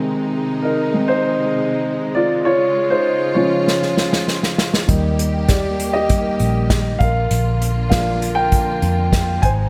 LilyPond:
<<
  \new Staff \with { instrumentName = "Grand piano" } { \time 4/4 \key bes \mixolydian \tempo 4 = 99 r4 <ees' bes'>8. <ees' c''>4~ <ees' c''>16 r8 <f' d''>8 | <f' des''>8. <ees' c''>8. <f' des''>2 r8 | r4 <g' d''>8. <g' ees''>4~ <g' ees''>16 r8 <bes' f''>8 | r4 <bes' f''>8. <bes' g''>4~ <bes' g''>16 r8 <c'' aes''>8 | }
  \new Staff \with { instrumentName = "Grand piano" } { \time 4/4 \key bes \mixolydian <ees aes c'>4 r8 <ees aes c'>8 r2 | r4. <f aes des'>8 r2 | <g bes ees'>2 <g bes ees'>8 r4. | r4 <f bes d'>8 r2 r8 | }
  \new Staff \with { instrumentName = "String section" } { \time 4/4 \key bes \mixolydian << { <c ees'>1 | <des f'>1 | <ees g'>2.~ <ees g'>8 <d f'>8~ | <d f'>2.~ <d f'>8 <c ees'>8 | } \\ { aes1~ | aes1 | bes2.~ bes8 bes8~ | bes2.~ bes8 aes8 | } >> }
  \new Staff \with { instrumentName = "Fingered electric bass" } { \clef bass \time 4/4 \key bes \mixolydian r1 | r1 | ees,2~ ees,8 bes,,4 bes,,8 | bes,,2~ bes,,8 f,4 aes,,8 | }
  \new DrumStaff \with { instrumentName = "Drums" } \drummode { \time 4/4 r4 r4 r4 r4 | r4 r4 sn16 sn16 sn16 sn16 sn16 sn16 sn16 sn16 | <hh bd>8 hh8 <hh bd sn>8 hh8 <hh bd>8 hh8 <hh bd sn>8 <hh bd>8 | hh8 hh8 <hh bd sn>8 hh8 <hh bd>8 hh8 <hh bd sn>8 <hh bd>8 | }
>>